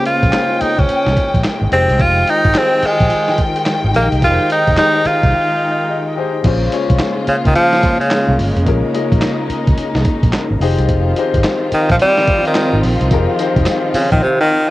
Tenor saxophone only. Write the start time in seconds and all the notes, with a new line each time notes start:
0.06 F4
0.62 D#4
0.79 C#4
1.73 C4
2.01 F4
2.30 D#4
2.58 C4
2.86 G#3
3.96 A#3
4.24 F4
4.52 D#4
4.78 D#4
5.07 F4
7.28 C#3
7.47 D#3
7.55 F3
8.00 C#3
11.74 D#3
11.91 F3
12.02 G3
12.47 D#3
13.95 C#3
14.12 D#3
14.23 C3
14.40 D#3